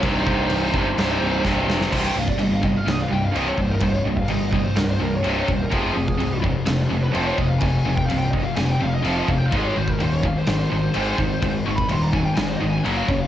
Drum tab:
CC |x---x---x-------|x---x---x---x---|x---x---x---x---|x---x---x---x---|
SD |--------o---o-oo|--------o-------|--------o-------|--------o-------|
BD |o-o---o-----o---|o--o--o-------o-|o--o--o-------o-|o--o--o-------o-|

CC |x---x---x---x---|x---x---x---x---|x---x---x---x---|
SD |--------o-------|--------o-------|--------o-------|
BD |o--o--o-------o-|o--o--o-------o-|o--o--o-------o-|